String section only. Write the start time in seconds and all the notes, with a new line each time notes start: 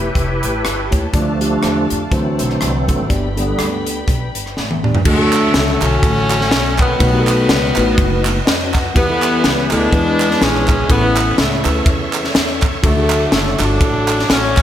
Already playing: C#5 E5 G5 A5
1.14 A4 D5 F5
2.11 C5 F#5
3.09 B4 G5 B5